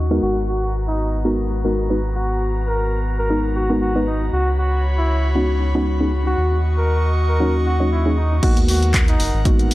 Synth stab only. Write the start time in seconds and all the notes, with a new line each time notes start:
0.11 G#3 B3 D#4 F#4 A#4
1.25 G#3 B3 D#4 F#4 A#4
1.65 G#3 B3 D#4 F#4 A#4
1.90 G#3 B3 D#4 F#4 B4
3.30 G#3 B3 D#4 F#4 A#4
3.70 G#3 B3 D#4 F#4 A#4
3.95 G#3 B3 D#4 F#4 B4
5.35 G#3 B3 C#4 D#4 F#4
5.75 G#3 B3 C#4 D#4 F#4
6.00 G#3 B3 C#4 D#4 G#4
7.40 F#3 A#3 C#4 D#4 F#4
7.80 F#3 A#3 C#4 D#4 F#4
8.06 F#3 A#3 C#4 D#4 G#4
8.43 G#3 A#3 B3 D#4 F#4
9.45 G#3 A#3 B3 D#4 F#4